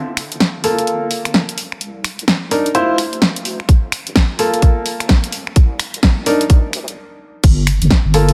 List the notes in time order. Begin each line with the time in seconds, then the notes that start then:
Already playing: G1
0.17 finger snap, open hi-hat
0.32 G1, closed hi-hat
0.40 snare
0.55 G1
0.64 A#3 F4 A4, open hi-hat
0.79 closed hi-hat
0.87 G1, closed hi-hat
1.11 open hi-hat
1.25 finger snap, closed hi-hat
1.34 snare
1.49 closed hi-hat
1.58 open hi-hat
1.72 finger snap
1.81 C2, closed hi-hat
2.04 finger snap, open hi-hat
2.19 C2, closed hi-hat
2.28 snare
2.43 C2
2.51 D4 D#4 A#4, open hi-hat
2.66 closed hi-hat
2.75 D2 E4 F4 C5, closed hi-hat
2.98 finger snap, open hi-hat
3.13 closed hi-hat
3.22 snare
3.36 closed hi-hat
3.45 open hi-hat
3.60 finger snap
3.69 G1, kick, closed hi-hat
3.92 finger snap, open hi-hat
4.07 G1, closed hi-hat
4.16 kick, snare
4.30 G1
4.39 A#3 F4 A4, open hi-hat
4.54 closed hi-hat
4.62 G1, kick, closed hi-hat
4.86 open hi-hat
5.00 finger snap, closed hi-hat
5.09 kick, snare
5.24 closed hi-hat
5.32 open hi-hat
5.47 finger snap
5.56 C2, kick, closed hi-hat
5.79 finger snap, open hi-hat
5.94 C2, closed hi-hat
6.03 kick, snare
6.18 C2
6.26 D4 D#4 A#4, open hi-hat
6.41 closed hi-hat
6.50 D2, kick, closed hi-hat
6.73 D2, finger snap, open hi-hat
6.88 A1, closed hi-hat
7.44 G1, kick, closed hi-hat, crash
7.67 finger snap, open hi-hat
7.82 G1, closed hi-hat
7.90 kick, snare
8.05 G1
8.14 A#3 F4 A4, open hi-hat
8.29 closed hi-hat